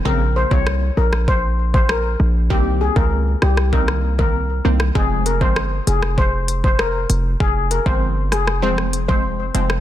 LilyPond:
<<
  \new Staff \with { instrumentName = "Steel pan" } { \time 4/4 \key f \minor \tempo 4 = 98 bes'16 r16 c''16 des''16 r8 bes'16 r16 c''16 r8 c''16 bes'8. r16 | g'16 r16 aes'16 bes'16 r8 g'16 r16 bes'16 r8 bes'16 r4 | aes'16 r16 bes'16 c''16 r8 aes'16 r16 c''16 r8 c''16 bes'8. r16 | aes'16 r16 bes'16 c''16 r8 aes'16 r16 c''16 r8 c''16 r4 | }
  \new Staff \with { instrumentName = "Synth pluck" } { \time 4/4 \key f \minor <des bes c'>8. <des bes c'>16 r2. | <ees bes c'>8. <ees bes c'>16 r4 <ees bes c'>16 r8 <ees bes c'>16 r8 <ees bes c'>16 r16 | <f aes c'>8. <f aes c'>16 r2. | r8. <f aes c'>16 r4 <f aes c'>16 r8 <f aes c'>16 r8 <f aes c'>16 r16 | }
  \new Staff \with { instrumentName = "808-style bass" } { \clef bass \time 4/4 \key f \minor bes,,8. c,8. bes,,2 bes,,8 | c,8. des,8. c,2 c,8 | f,,8. g,,8. f,,2 f,,8 | f,,8. g,,8. f,,2 f,,8 | }
  \new DrumStaff \with { instrumentName = "Drums" } \drummode { \time 4/4 bd8. bd16 ss8. ss16 bd8. bd16 ss4 | bd8. bd16 r8 ss16 ss16 bd16 ss8 bd16 r8. ss16 | bd8 hh16 bd16 ss8 hh16 ss16 bd8 hh16 bd16 ss8 hh8 | bd8 hh16 bd16 r8 <hh ss>16 ss16 r16 ss16 hh16 bd16 r8 hh16 ss16 | }
>>